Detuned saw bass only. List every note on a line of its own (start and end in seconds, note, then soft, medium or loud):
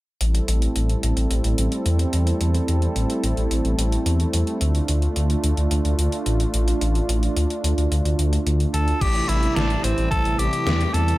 0.21 0.40 A1 loud
0.48 0.68 A1 loud
0.76 0.95 A1 medium
1.03 1.13 A1 loud
1.17 1.27 A1 medium
1.31 1.41 A1 medium
1.45 1.54 A1 loud
1.58 1.68 A1 loud
1.86 2.05 E2 medium
2.13 2.33 E2 loud
2.41 2.60 E2 medium
2.68 2.88 E2 loud
2.96 3.06 A1 loud
3.24 3.33 A1 medium
3.37 3.47 A1 medium
3.51 3.61 A1 medium
3.65 3.75 A1 medium
3.78 3.98 A1 medium
4.06 4.26 E2 medium
4.34 4.43 E2 medium
4.61 4.81 D2 loud
4.89 5.08 D2 loud
5.16 5.36 D2 medium
5.44 5.53 D2 loud
5.58 5.67 D2 medium
5.71 5.81 D2 medium
5.85 5.95 D2 loud
5.98 6.08 D2 loud
6.26 6.46 A1 loud
6.54 6.73 A1 loud
6.81 7.01 A1 medium
7.09 7.28 A1 loud
7.36 7.46 D2 loud
7.64 7.74 D2 medium
7.78 7.87 D2 medium
7.92 8.01 D2 medium
8.05 8.15 D2 medium
8.19 8.38 D2 medium
8.46 8.66 D2 medium
8.74 8.93 D2 loud
9.01 9.21 A1 loud
9.29 9.48 A1 loud
9.56 9.76 A1 medium
9.84 9.94 A1 loud
9.98 10.07 A1 loud
10.12 10.21 A1 medium
10.25 10.35 A1 loud
10.39 10.49 A1 loud
10.66 10.86 E2 loud
10.94 11.14 E2 loud